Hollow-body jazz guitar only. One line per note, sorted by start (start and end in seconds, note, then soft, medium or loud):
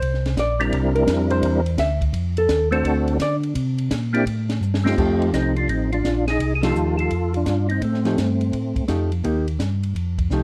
0.00 0.35 C5 loud
0.39 0.61 D5 loud
0.95 1.28 A#4 medium
1.31 1.75 C5 loud
1.79 2.01 E5 loud
2.38 2.71 A4 medium
2.72 3.17 C5 medium
3.22 3.35 D5 medium
4.97 5.97 F3 medium
4.97 5.97 A3 medium
4.97 5.97 D#4 medium
4.97 5.97 G4 medium
6.63 7.09 F3 medium
6.63 7.09 A3 medium
6.63 7.09 D#4 medium
6.63 7.09 G4 medium
8.05 8.16 F3 medium
8.05 8.16 A3 medium
8.05 8.17 D#4 medium
8.05 8.17 G4 medium
8.88 9.09 F3 medium
8.88 9.09 A3 medium
8.88 9.09 D#4 medium
8.88 9.10 G4 medium
9.24 9.45 A#3 medium
9.24 9.45 D#4 medium
9.24 9.45 G4 medium
10.32 10.43 F3 medium
10.32 10.43 A3 soft
10.32 10.43 D#4 medium
10.32 10.43 G4 medium